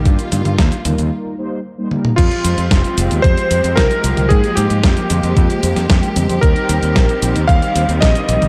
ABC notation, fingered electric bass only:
X:1
M:4/4
L:1/16
Q:1/4=113
K:Fm
V:1 name="Fingered electric bass" clef=bass
G,, z G,, G,, E,, z E,, E,, z8 | F,, z F,, F,, F,,, z F,,, E,, F,, z F,, F,, C,, z C,, C,, | A,, z A,, A,, F,, z F,, F,, F,, z F,, F,, F,, z F,, F,, | E,, z E,, E,, B,,, z B,,, E,, E,, z E,, E,, B,,, z B,,, B,,, |]